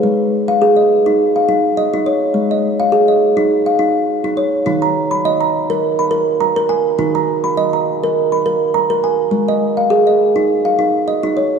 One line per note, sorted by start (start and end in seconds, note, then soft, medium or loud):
0.00 2.31 G#3 medium
0.00 0.20 B4 medium
0.48 0.90 F5 medium
0.62 0.90 G#4 medium
0.77 1.19 D#5 medium
1.06 1.35 D#4 medium
1.36 1.77 F5 medium
1.49 1.77 D#4 medium
1.77 2.22 D#5 medium
1.94 2.22 D#4 medium
2.06 2.51 C#5 medium
2.34 4.62 G#3 medium
2.51 2.93 D#5 medium
2.80 3.22 F5 medium
2.92 3.22 G#4 medium
3.08 3.51 D#5 medium
3.37 3.66 D#4 medium
3.66 4.09 F5 medium
3.79 4.08 D#4 medium
4.24 4.54 D#4 medium
4.37 4.83 C#5 medium
4.66 6.95 D#3 medium
4.66 4.95 D#4 medium
4.82 5.25 A#5 medium
5.11 5.54 B5 medium
5.25 5.54 D#5 medium
5.41 5.83 A#5 medium
5.70 5.99 A#4 medium
5.99 6.41 B5 medium
6.11 6.41 A#4 medium
6.41 6.86 A#5 medium
6.56 6.86 A#4 medium
6.69 7.15 G#5 medium
6.99 9.28 D#3 medium
6.99 7.28 D#4 medium
7.15 7.57 A#5 medium
7.44 7.86 B5 medium
7.57 7.87 D#5 medium
7.73 8.16 A#5 medium
8.04 8.32 A#4 medium
8.32 8.74 B5 medium
8.46 8.74 A#4 medium
8.74 9.19 A#5 medium
8.90 9.19 A#4 medium
9.04 9.49 G#5 medium
9.31 11.59 G#3 medium
9.48 9.90 D#5 medium
9.77 10.19 F5 medium
9.90 10.20 G#4 medium
10.07 10.49 D#5 medium
10.36 10.65 D#4 medium
10.65 11.07 F5 medium
10.79 11.07 D#4 medium
11.08 11.53 D#5 medium
11.23 11.52 D#4 medium
11.37 11.59 C#5 medium